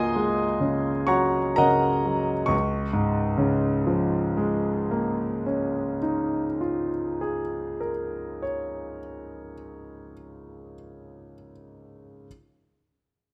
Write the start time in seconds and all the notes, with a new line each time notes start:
Already playing: C#2 A#3 F4 F#4 G#4 D#5 G#5 C6 D#6
0.16 G#3
0.60 C#3
1.07 F#3 C#5 F#5 A#5 C#6
1.56 C#3 A#4 D#5 F#5 A#5
2.06 F#3
2.46 C#2 C#6
2.93 G#2
3.37 C#3
3.87 F3
4.37 G#3
4.91 A#3
5.46 C#4
6.02 D#4
6.61 F4
7.21 G#4
7.81 A#4
8.43 C#5